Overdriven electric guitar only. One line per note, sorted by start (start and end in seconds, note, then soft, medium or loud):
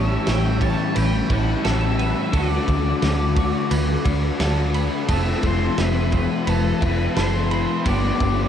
0.00 1.27 A2 medium
0.00 1.28 E3 medium
0.00 1.28 G3 medium
0.00 1.29 C#4 medium
0.00 1.28 E4 medium
1.30 1.62 A2 medium
1.30 1.63 E3 medium
1.30 1.63 G3 medium
1.30 1.63 C#4 medium
1.30 1.62 E4 medium
1.63 2.31 A2 medium
1.63 2.31 E3 medium
1.63 2.32 G3 medium
1.63 2.32 C#4 medium
1.63 2.32 E4 medium
2.32 4.03 D3 medium
2.32 4.04 A3 loud
2.32 4.05 D4 medium
2.32 4.04 F#4 medium
4.05 4.38 D3 medium
4.05 4.39 A3 medium
4.05 4.39 D4 medium
4.05 4.38 F#4 medium
4.39 5.07 D3 medium
4.39 5.08 A3 medium
4.39 5.08 D4 medium
4.39 5.09 F#4 medium
5.08 6.80 F3 medium
5.08 6.80 A3 medium
5.08 6.81 C4 medium
5.08 6.79 F4 medium
6.81 7.14 F3 medium
6.81 7.15 A3 medium
6.81 7.15 C4 medium
6.81 7.14 F4 medium
7.16 7.83 F3 medium
7.16 7.84 A3 medium
7.16 7.85 C4 medium
7.16 7.85 F4 medium
7.85 8.48 G3 medium
7.85 8.48 B3 medium
7.85 8.48 D4 medium
7.85 8.48 G4 medium